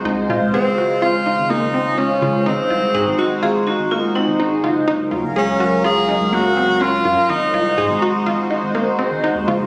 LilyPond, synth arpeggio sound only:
\new Staff \with { instrumentName = "Synth arpeggio sound" } { \time 5/4 \key aes \mixolydian \tempo 4 = 124 ees'8 f'8 aes'8 ges'8 f'8 ees'8 bes8 c'8 des'8 f'8 | ees'8 f'8 aes'8 ges'8 f'8 ees'8 bes8 c'8 ees'8 f'8 | ees'8 f'8 aes'8 ges'8 f'8 ees'8 bes8 c'8 des'8 f'8 | ees'8 f'8 aes'8 ges'8 f'8 ees'8 bes8 c'8 ees'8 f'8 | }